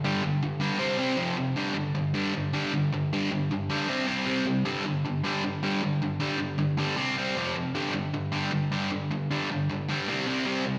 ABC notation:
X:1
M:4/4
L:1/8
Q:1/4=156
K:C
V:1 name="Overdriven electric guitar" clef=bass
[G,,D,G,] [G,,D,] [G,,D,] [G,,D,G,] [C,G,C] [C,G,C] [F,,C,F,] [F,,C,] | [G,,D,G,] [G,,D,] [G,,D,] [G,,D,G,] [G,,D,] [G,,D,G,] [G,,D,] [G,,D,] | [G,,D,G,] [G,,D,] [G,,D,] [G,,D,G,] [C,G,C] [C,G,C] [C,G,C] [C,G,] | [G,,D,G,] [G,,D,] [G,,D,] [G,,D,G,] [G,,D,] [G,,D,G,] [G,,D,] [G,,D,] |
[G,,D,G,] [G,,D,] [G,,D,] [G,,D,G,] [C,G,C] [C,G,C] [F,,C,F,] [F,,C,] | [G,,D,G,] [G,,D,] [G,,D,] [G,,D,G,] [G,,D,] [G,,D,G,] [G,,D,] [G,,D,] | [G,,D,G,] [G,,D,] [G,,D,] [G,,D,G,] [C,G,C] [C,G,C] [C,G,C] [C,G,] |]